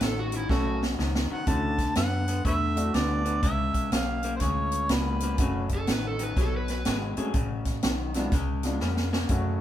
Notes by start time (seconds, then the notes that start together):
0.00 A1 F#2 D#3 A4, snare, closed hi-hat
0.19 F#4
0.32 F#2 D#3, closed hi-hat
0.36 E4
0.49 B1 F#2 C#3 A3 C#4 F#4 A4, kick, snare
0.83 snare
0.99 C#2 F#2 D#3, snare
1.15 snare
1.30 F#2 D#3 F#5, muted fingered electric bass stroke
1.47 D2 D3 A3 C#4 E4 F#4 A5, kick, closed hi-hat
1.78 kick, snare, closed hi-hat
1.95 F#2 D3 B3 F#5, snare, closed hi-hat
2.28 D3 B3, closed hi-hat
2.45 E2 D3 A3 B4 C#5 E5, kick, closed hi-hat
2.76 A3 D4 E4 F#4, closed hi-hat
2.94 D2 D3 B3 D5, snare, closed hi-hat
3.25 D3 B3, closed hi-hat
3.43 C#2 C#3 G#3 E5, kick, closed hi-hat
3.74 kick, closed hi-hat
3.92 B1 C#3 A#3 F5, snare, closed hi-hat
4.23 C#3 A#3, closed hi-hat
4.36 C5, closed hi-hat
4.40 D2 C#3 G#3 C#5, kick, snare
4.72 closed hi-hat
4.89 C#2 C#3 G#3 A#3 B3 D4 F4 B4, snare, closed hi-hat
5.20 C#3 A#3, closed hi-hat
5.38 F#1 F#2 C#3 F#3 A3 C#4 F#4, kick, closed hi-hat
5.69 kick, closed hi-hat
5.75 A4
5.87 A1 F#2 D#3, snare, closed hi-hat
5.92 B4
6.07 A4
6.19 F#2 D#3, closed hi-hat
6.23 B4
6.37 B1 B2 F#3, kick, snare, closed hi-hat
6.41 A4
6.57 B4
6.68 B4, snare, closed hi-hat
6.85 G#1 B2 G#3, snare, closed hi-hat
7.17 B2 F#3 G#3 A3 C#4 G#4, muted fingered electric bass stroke, closed hi-hat
7.34 A1 F#2 C#3, kick, closed hi-hat
7.65 kick, snare, closed hi-hat
7.83 B1 F#2 D#3, snare, closed hi-hat
8.14 F#2 D#3 G#3 B3 D4 F4, snare, closed hi-hat
8.32 C#2 C#3 G#3, kick, snare, closed hi-hat
8.63 G#3 B3 D4 F4, snare, closed hi-hat
8.80 F2 C#3 A#3, snare
8.97 snare
9.13 C#3 A#3, snare
9.29 F#2 C#3 F#3 A3 C#4 F#4, kick, closed hi-hat